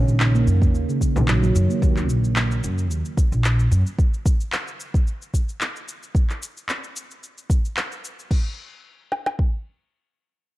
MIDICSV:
0, 0, Header, 1, 5, 480
1, 0, Start_track
1, 0, Key_signature, -6, "minor"
1, 0, Tempo, 540541
1, 1618, Time_signature, 4, 2, 24, 8
1, 9389, End_track
2, 0, Start_track
2, 0, Title_t, "Handpan"
2, 0, Program_c, 0, 114
2, 67, Note_on_c, 0, 51, 72
2, 130, Note_off_c, 0, 51, 0
2, 305, Note_on_c, 0, 58, 76
2, 411, Note_off_c, 0, 58, 0
2, 548, Note_on_c, 0, 58, 70
2, 775, Note_off_c, 0, 58, 0
2, 790, Note_on_c, 0, 49, 71
2, 894, Note_off_c, 0, 49, 0
2, 1028, Note_on_c, 0, 51, 72
2, 1090, Note_off_c, 0, 51, 0
2, 1140, Note_on_c, 0, 54, 78
2, 1258, Note_off_c, 0, 54, 0
2, 1268, Note_on_c, 0, 54, 90
2, 1495, Note_off_c, 0, 54, 0
2, 1509, Note_on_c, 0, 58, 68
2, 1571, Note_off_c, 0, 58, 0
2, 9389, End_track
3, 0, Start_track
3, 0, Title_t, "Upright bass"
3, 0, Program_c, 1, 32
3, 0, Note_on_c, 1, 34, 90
3, 363, Note_off_c, 1, 34, 0
3, 418, Note_on_c, 1, 42, 83
3, 658, Note_off_c, 1, 42, 0
3, 658, Note_on_c, 1, 39, 81
3, 747, Note_off_c, 1, 39, 0
3, 1028, Note_on_c, 1, 34, 84
3, 1322, Note_off_c, 1, 34, 0
3, 1379, Note_on_c, 1, 42, 87
3, 1467, Note_off_c, 1, 42, 0
3, 1618, Note_on_c, 1, 39, 102
3, 1860, Note_off_c, 1, 39, 0
3, 1860, Note_on_c, 1, 34, 101
3, 2283, Note_off_c, 1, 34, 0
3, 2340, Note_on_c, 1, 42, 82
3, 2580, Note_off_c, 1, 42, 0
3, 2580, Note_on_c, 1, 39, 84
3, 2668, Note_off_c, 1, 39, 0
3, 2949, Note_on_c, 1, 34, 86
3, 3243, Note_off_c, 1, 34, 0
3, 3299, Note_on_c, 1, 42, 83
3, 3387, Note_off_c, 1, 42, 0
3, 9389, End_track
4, 0, Start_track
4, 0, Title_t, "Frame drum"
4, 1030, Note_on_c, 9, 64, 84
4, 1119, Note_off_c, 9, 64, 0
4, 9389, End_track
5, 0, Start_track
5, 0, Title_t, "Drums"
5, 74, Note_on_c, 9, 69, 32
5, 163, Note_off_c, 9, 69, 0
5, 178, Note_on_c, 9, 39, 100
5, 184, Note_on_c, 9, 69, 41
5, 266, Note_off_c, 9, 39, 0
5, 272, Note_off_c, 9, 69, 0
5, 313, Note_on_c, 9, 69, 31
5, 401, Note_off_c, 9, 69, 0
5, 423, Note_on_c, 9, 69, 68
5, 512, Note_off_c, 9, 69, 0
5, 548, Note_on_c, 9, 36, 99
5, 556, Note_on_c, 9, 69, 32
5, 637, Note_off_c, 9, 36, 0
5, 645, Note_off_c, 9, 69, 0
5, 665, Note_on_c, 9, 69, 43
5, 754, Note_off_c, 9, 69, 0
5, 794, Note_on_c, 9, 69, 31
5, 883, Note_off_c, 9, 69, 0
5, 898, Note_on_c, 9, 36, 60
5, 904, Note_on_c, 9, 69, 69
5, 987, Note_off_c, 9, 36, 0
5, 993, Note_off_c, 9, 69, 0
5, 1035, Note_on_c, 9, 69, 31
5, 1124, Note_off_c, 9, 69, 0
5, 1137, Note_on_c, 9, 39, 106
5, 1143, Note_on_c, 9, 69, 40
5, 1226, Note_off_c, 9, 39, 0
5, 1232, Note_off_c, 9, 69, 0
5, 1273, Note_on_c, 9, 69, 28
5, 1362, Note_off_c, 9, 69, 0
5, 1382, Note_on_c, 9, 69, 74
5, 1471, Note_off_c, 9, 69, 0
5, 1514, Note_on_c, 9, 69, 31
5, 1603, Note_off_c, 9, 69, 0
5, 1618, Note_on_c, 9, 36, 112
5, 1623, Note_on_c, 9, 69, 46
5, 1707, Note_off_c, 9, 36, 0
5, 1712, Note_off_c, 9, 69, 0
5, 1746, Note_on_c, 9, 39, 29
5, 1752, Note_on_c, 9, 69, 31
5, 1835, Note_off_c, 9, 39, 0
5, 1841, Note_off_c, 9, 69, 0
5, 1861, Note_on_c, 9, 69, 81
5, 1950, Note_off_c, 9, 69, 0
5, 1992, Note_on_c, 9, 69, 35
5, 2081, Note_off_c, 9, 69, 0
5, 2095, Note_on_c, 9, 39, 101
5, 2101, Note_on_c, 9, 69, 43
5, 2184, Note_off_c, 9, 39, 0
5, 2190, Note_off_c, 9, 69, 0
5, 2232, Note_on_c, 9, 69, 32
5, 2321, Note_off_c, 9, 69, 0
5, 2342, Note_on_c, 9, 69, 73
5, 2430, Note_off_c, 9, 69, 0
5, 2471, Note_on_c, 9, 69, 33
5, 2559, Note_off_c, 9, 69, 0
5, 2583, Note_on_c, 9, 69, 45
5, 2671, Note_off_c, 9, 69, 0
5, 2711, Note_on_c, 9, 69, 33
5, 2800, Note_off_c, 9, 69, 0
5, 2819, Note_on_c, 9, 36, 96
5, 2824, Note_on_c, 9, 69, 69
5, 2907, Note_off_c, 9, 36, 0
5, 2913, Note_off_c, 9, 69, 0
5, 2952, Note_on_c, 9, 69, 30
5, 3040, Note_off_c, 9, 69, 0
5, 3058, Note_on_c, 9, 39, 97
5, 3064, Note_on_c, 9, 69, 43
5, 3147, Note_off_c, 9, 39, 0
5, 3153, Note_off_c, 9, 69, 0
5, 3192, Note_on_c, 9, 69, 29
5, 3281, Note_off_c, 9, 69, 0
5, 3303, Note_on_c, 9, 69, 78
5, 3392, Note_off_c, 9, 69, 0
5, 3434, Note_on_c, 9, 69, 32
5, 3522, Note_off_c, 9, 69, 0
5, 3539, Note_on_c, 9, 36, 116
5, 3545, Note_on_c, 9, 69, 43
5, 3628, Note_off_c, 9, 36, 0
5, 3634, Note_off_c, 9, 69, 0
5, 3674, Note_on_c, 9, 69, 31
5, 3763, Note_off_c, 9, 69, 0
5, 3779, Note_on_c, 9, 36, 114
5, 3783, Note_on_c, 9, 69, 81
5, 3868, Note_off_c, 9, 36, 0
5, 3872, Note_off_c, 9, 69, 0
5, 3912, Note_on_c, 9, 69, 35
5, 4001, Note_off_c, 9, 69, 0
5, 4017, Note_on_c, 9, 39, 89
5, 4023, Note_on_c, 9, 69, 43
5, 4106, Note_off_c, 9, 39, 0
5, 4112, Note_off_c, 9, 69, 0
5, 4153, Note_on_c, 9, 69, 30
5, 4242, Note_off_c, 9, 69, 0
5, 4264, Note_on_c, 9, 69, 71
5, 4353, Note_off_c, 9, 69, 0
5, 4389, Note_on_c, 9, 36, 97
5, 4395, Note_on_c, 9, 69, 33
5, 4478, Note_off_c, 9, 36, 0
5, 4484, Note_off_c, 9, 69, 0
5, 4506, Note_on_c, 9, 69, 43
5, 4595, Note_off_c, 9, 69, 0
5, 4635, Note_on_c, 9, 69, 32
5, 4724, Note_off_c, 9, 69, 0
5, 4739, Note_on_c, 9, 36, 59
5, 4745, Note_on_c, 9, 69, 75
5, 4828, Note_off_c, 9, 36, 0
5, 4834, Note_off_c, 9, 69, 0
5, 4873, Note_on_c, 9, 69, 31
5, 4962, Note_off_c, 9, 69, 0
5, 4979, Note_on_c, 9, 39, 94
5, 4985, Note_on_c, 9, 69, 42
5, 5068, Note_off_c, 9, 39, 0
5, 5074, Note_off_c, 9, 69, 0
5, 5116, Note_on_c, 9, 69, 29
5, 5205, Note_off_c, 9, 69, 0
5, 5225, Note_on_c, 9, 69, 71
5, 5314, Note_off_c, 9, 69, 0
5, 5354, Note_on_c, 9, 69, 29
5, 5443, Note_off_c, 9, 69, 0
5, 5459, Note_on_c, 9, 36, 107
5, 5466, Note_on_c, 9, 69, 42
5, 5548, Note_off_c, 9, 36, 0
5, 5555, Note_off_c, 9, 69, 0
5, 5591, Note_on_c, 9, 39, 28
5, 5597, Note_on_c, 9, 69, 29
5, 5680, Note_off_c, 9, 39, 0
5, 5686, Note_off_c, 9, 69, 0
5, 5705, Note_on_c, 9, 69, 79
5, 5794, Note_off_c, 9, 69, 0
5, 5836, Note_on_c, 9, 69, 31
5, 5925, Note_off_c, 9, 69, 0
5, 5939, Note_on_c, 9, 39, 85
5, 5945, Note_on_c, 9, 69, 41
5, 6028, Note_off_c, 9, 39, 0
5, 6034, Note_off_c, 9, 69, 0
5, 6073, Note_on_c, 9, 69, 31
5, 6161, Note_off_c, 9, 69, 0
5, 6183, Note_on_c, 9, 69, 69
5, 6272, Note_off_c, 9, 69, 0
5, 6314, Note_on_c, 9, 69, 31
5, 6403, Note_off_c, 9, 69, 0
5, 6424, Note_on_c, 9, 69, 42
5, 6513, Note_off_c, 9, 69, 0
5, 6553, Note_on_c, 9, 69, 29
5, 6642, Note_off_c, 9, 69, 0
5, 6658, Note_on_c, 9, 36, 98
5, 6663, Note_on_c, 9, 69, 74
5, 6746, Note_off_c, 9, 36, 0
5, 6752, Note_off_c, 9, 69, 0
5, 6795, Note_on_c, 9, 69, 30
5, 6883, Note_off_c, 9, 69, 0
5, 6897, Note_on_c, 9, 39, 90
5, 6903, Note_on_c, 9, 69, 40
5, 6986, Note_off_c, 9, 39, 0
5, 6992, Note_off_c, 9, 69, 0
5, 7033, Note_on_c, 9, 69, 27
5, 7122, Note_off_c, 9, 69, 0
5, 7145, Note_on_c, 9, 69, 74
5, 7234, Note_off_c, 9, 69, 0
5, 7276, Note_on_c, 9, 69, 30
5, 7365, Note_off_c, 9, 69, 0
5, 7377, Note_on_c, 9, 36, 93
5, 7380, Note_on_c, 9, 49, 75
5, 7466, Note_off_c, 9, 36, 0
5, 7469, Note_off_c, 9, 49, 0
5, 8097, Note_on_c, 9, 38, 53
5, 8186, Note_off_c, 9, 38, 0
5, 8226, Note_on_c, 9, 38, 67
5, 8315, Note_off_c, 9, 38, 0
5, 8337, Note_on_c, 9, 36, 77
5, 8426, Note_off_c, 9, 36, 0
5, 9389, End_track
0, 0, End_of_file